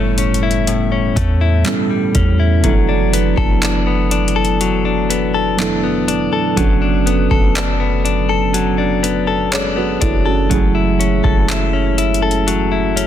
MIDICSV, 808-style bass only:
0, 0, Header, 1, 2, 480
1, 0, Start_track
1, 0, Tempo, 983607
1, 1287, Time_signature, 4, 2, 24, 8
1, 6378, End_track
2, 0, Start_track
2, 0, Title_t, "808-style bass"
2, 0, Program_c, 0, 38
2, 0, Note_on_c, 0, 30, 96
2, 549, Note_off_c, 0, 30, 0
2, 570, Note_on_c, 0, 40, 94
2, 799, Note_off_c, 0, 40, 0
2, 1050, Note_on_c, 0, 40, 99
2, 1279, Note_off_c, 0, 40, 0
2, 1290, Note_on_c, 0, 30, 110
2, 1634, Note_off_c, 0, 30, 0
2, 1649, Note_on_c, 0, 30, 97
2, 3069, Note_off_c, 0, 30, 0
2, 3210, Note_on_c, 0, 30, 114
2, 3554, Note_off_c, 0, 30, 0
2, 3569, Note_on_c, 0, 30, 93
2, 4869, Note_off_c, 0, 30, 0
2, 4890, Note_on_c, 0, 30, 99
2, 5119, Note_off_c, 0, 30, 0
2, 5129, Note_on_c, 0, 30, 109
2, 5474, Note_off_c, 0, 30, 0
2, 5489, Note_on_c, 0, 30, 95
2, 6378, Note_off_c, 0, 30, 0
2, 6378, End_track
0, 0, End_of_file